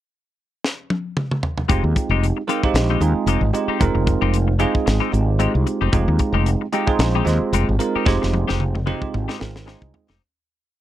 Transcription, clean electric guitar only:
1.69 1.83 G#3 medium
1.69 1.84 C4 medium
1.69 1.83 D#4 medium
1.69 1.83 G4 medium
1.84 muted clean electric guitar stroke medium
1.96 muted clean electric guitar stroke soft
2.11 2.25 G#3 medium
2.11 2.25 C4 medium
2.11 2.25 D#4 medium
2.11 2.25 G4 medium
2.37 muted clean electric guitar stroke soft
2.49 2.63 G#3 medium
2.49 2.63 C4 medium
2.49 2.63 D#4 medium
2.49 2.63 G4 medium
2.64 muted clean electric guitar stroke soft
2.75 muted clean electric guitar stroke soft
2.90 3.01 G#3 medium
2.90 3.01 C4 medium
2.90 3.01 D#4 medium
2.90 3.01 G4 medium
3.02 muted clean electric guitar stroke soft
3.27 3.42 G#3 medium
3.27 3.42 C4 medium
3.27 3.42 D#4 medium
3.27 3.41 G4 medium
3.54 muted clean electric guitar stroke soft
3.68 3.84 C4 soft
3.68 3.83 D#4 medium
3.68 3.83 G4 medium
3.95 muted clean electric guitar stroke soft
4.07 muted clean electric guitar stroke soft
4.22 4.37 G#3 medium
4.22 4.36 C4 medium
4.22 4.36 D#4 medium
4.22 4.36 G4 medium
4.48 muted clean electric guitar stroke soft
4.59 4.74 G#3 medium
4.59 4.74 C4 medium
4.59 4.74 D#4 medium
4.59 4.73 G4 medium
4.74 muted clean electric guitar stroke soft
4.86 muted clean electric guitar stroke soft
5.00 5.12 G#3 medium
5.00 5.12 C4 medium
5.00 5.12 D#4 medium
5.00 5.12 G4 medium
5.39 5.54 G#3 medium
5.39 5.54 C4 medium
5.39 5.53 D#4 medium
5.39 5.53 G4 medium
5.54 muted clean electric guitar stroke medium
5.66 muted clean electric guitar stroke soft
5.81 5.96 C4 medium
5.81 5.96 D#4 medium
5.81 5.96 G4 medium
6.08 muted clean electric guitar stroke soft
6.20 muted clean electric guitar stroke soft
6.34 6.49 G#3 medium
6.34 6.49 C4 medium
6.34 6.49 D#4 medium
6.34 6.49 G4 medium
6.61 muted clean electric guitar stroke soft
6.73 6.88 G#3 medium
6.73 6.88 C4 medium
6.73 6.88 D#4 medium
6.73 6.88 G4 medium
6.89 muted clean electric guitar stroke soft
7.01 muted clean electric guitar stroke soft
7.15 7.26 G#3 medium
7.15 7.26 C4 medium
7.15 7.27 D#4 medium
7.15 7.27 G4 medium
7.54 7.68 G#3 medium
7.54 7.68 C4 medium
7.54 7.68 D#4 medium
7.54 7.67 G4 medium
7.69 muted clean electric guitar stroke soft
7.81 muted clean electric guitar stroke soft
7.96 8.11 C4 soft
7.96 8.10 D#4 medium
7.96 8.10 G4 medium
8.22 muted clean electric guitar stroke medium
8.34 muted clean electric guitar stroke soft
8.48 8.63 G#3 medium
8.48 8.63 C4 medium
8.48 8.63 D#4 medium
8.48 8.63 G4 medium
8.75 muted clean electric guitar stroke soft
8.86 9.01 G#3 medium
8.86 9.01 C4 medium
8.86 9.01 D#4 medium
8.86 9.00 G4 medium
9.02 muted clean electric guitar stroke soft
9.14 muted clean electric guitar stroke soft
9.28 9.39 G#3 medium
9.28 9.39 C4 medium
9.28 9.39 D#4 medium
9.28 9.39 G4 medium
9.67 9.82 G#3 medium
9.67 9.82 C4 medium
9.67 9.82 D#4 medium
9.67 9.81 G4 medium
9.94 muted clean electric guitar stroke soft
10.09 10.21 C4 soft
10.09 10.21 D#4 soft
10.09 10.21 G4 medium

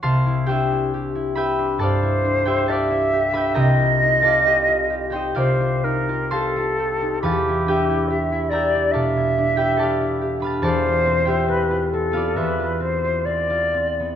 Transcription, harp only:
0.03 3.55 C2 medium
0.03 0.48 C5 medium
0.03 1.79 F5 medium
0.03 1.78 A5 medium
0.03 3.93 C6 loud
0.27 0.70 E4 medium
0.46 1.58 D4 medium
0.46 0.93 G4 medium
0.46 2.46 C5 medium
0.46 1.36 G5 loud
0.51 1.35 E5 medium
0.71 1.14 E4 medium
0.94 1.36 G4 medium
1.15 2.02 E4 medium
1.35 2.45 G4 medium
1.35 3.33 B4 medium
1.35 2.46 E5 medium
1.35 2.44 G5 medium
1.35 3.32 B5 loud
1.59 2.24 D4 medium
1.78 3.61 G2 medium
1.78 2.68 A4 medium
1.78 2.68 D5 medium
1.78 2.67 A5 loud
1.83 2.68 F5 medium
2.03 2.45 E4 medium
2.25 3.32 D4 medium
2.45 2.89 E4 medium
2.45 2.66 G4 medium
2.45 5.12 C5 medium
2.45 3.33 E5 medium
2.45 3.33 G5 medium
2.66 3.12 G4 medium
2.66 3.61 A4 medium
2.66 4.22 F5 medium
2.66 3.81 A5 medium
2.72 3.61 D5 medium
2.90 3.61 E4 medium
3.13 4.45 G4 medium
3.32 3.61 D4 medium
3.32 3.61 B4 medium
3.32 3.61 E5 medium
3.32 3.60 B5 loud
3.37 3.54 G5 medium
3.54 5.35 C2 medium
3.54 5.35 A#4 medium
3.54 5.12 D#5 medium
3.54 5.11 G5 medium
3.54 7.24 A#5 loud
3.79 4.20 F4 medium
4.02 5.12 D#4 medium
4.21 4.67 F4 medium
4.21 7.25 A4 medium
4.21 5.35 D5 medium
4.21 5.78 A5 medium
4.27 5.33 F5 medium
4.46 4.89 G4 medium
4.68 5.35 F4 medium
4.90 5.10 G4 medium
5.10 5.83 D#4 medium
5.10 6.31 G4 medium
5.10 6.30 C5 medium
5.10 7.67 G5 medium
5.16 7.25 D#5 medium
5.35 7.26 C2 medium
5.35 5.60 F4 medium
5.35 7.25 A#4 medium
5.35 8.93 D5 medium
5.35 6.30 F5 medium
5.61 6.08 F4 medium
5.84 7.01 D#4 medium
6.09 6.55 F4 medium
6.31 6.78 G4 medium
6.31 7.25 C5 medium
6.31 7.23 F5 medium
6.31 7.23 A5 medium
6.31 7.25 C6 loud
6.56 7.26 F4 medium
6.80 7.67 G4 medium
7.02 7.27 D#4 medium
7.23 10.61 E2 medium
7.23 7.67 B4 medium
7.23 8.93 F5 medium
7.23 8.92 A5 medium
7.23 10.41 B5 loud
7.49 7.88 E4 medium
7.66 8.74 D4 medium
7.66 8.09 G4 medium
7.66 9.57 B4 medium
7.66 8.51 G5 medium
7.71 8.52 E5 medium
7.89 8.31 E4 soft
8.10 8.52 G4 medium
8.32 9.16 E4 medium
8.50 9.55 G4 medium
8.50 10.67 A#4 medium
8.50 9.58 E5 medium
8.50 9.24 A#5 medium
8.55 9.56 G5 medium
8.75 9.37 D4 soft
8.93 10.67 B2 medium
8.93 9.77 A4 medium
8.93 9.78 D5 medium
8.93 9.79 F5 medium
8.93 9.78 A5 medium
9.17 9.57 E4 soft
9.38 10.40 D4 medium
9.56 10.00 E4 medium
9.56 9.79 G4 medium
9.56 10.41 B4 medium
9.56 10.66 G5 medium
9.61 11.26 E5 medium
9.77 10.20 G4 medium
9.77 10.63 A4 medium
9.77 10.63 D5 medium
9.77 10.42 A5 loud
9.83 10.42 F5 medium
10.01 13.91 E4 medium
10.21 10.67 G4 medium
10.40 10.67 D4 medium
10.40 12.13 B4 medium
10.40 14.16 B5 medium
10.44 10.63 F5 medium
10.44 10.61 A5 medium
10.62 12.36 E2 medium
10.62 12.36 A4 medium
10.62 12.13 D5 medium
10.62 14.16 A5 loud
10.67 12.12 F5 medium
10.86 11.27 F4 medium
11.06 11.47 C4 medium
11.25 11.70 F4 medium
11.25 14.16 G4 medium
11.25 12.36 C5 medium
11.25 12.35 E5 medium
11.25 12.76 G5 medium
11.48 11.92 C4 medium
11.71 12.13 F4 soft
11.93 12.79 C4 medium
12.12 13.99 B3 medium
12.12 12.59 F4 medium
12.12 14.16 B4 medium
12.12 14.16 F5 medium
12.17 14.16 D5 medium
12.36 14.16 E2 medium
12.36 14.16 A4 medium
12.36 14.16 C5 medium
12.36 14.16 E5 medium
12.60 13.03 F4 medium
12.80 13.25 C4 medium
13.05 13.49 F4 medium
13.26 13.73 C4 medium
13.50 14.16 F4 medium
13.74 14.16 C4 medium
14.00 14.16 B3 medium

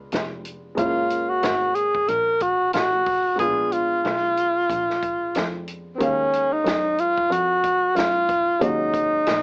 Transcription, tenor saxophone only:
0.79 1.31 F4 medium
1.29 1.76 F#4 medium
1.75 2.10 G#4 medium
2.08 2.43 A#4 loud
2.42 2.73 F#4 medium
2.74 3.35 F#4 medium
3.39 3.74 G#4 medium
3.72 5.68 F4 medium
5.95 6.03 C4 medium
6.01 6.54 C#4 medium
6.53 7.01 D#4 medium
7.00 7.34 F4 loud
7.32 7.98 F#4 loud
7.96 8.61 F4 loud
8.62 9.43 D#4 medium

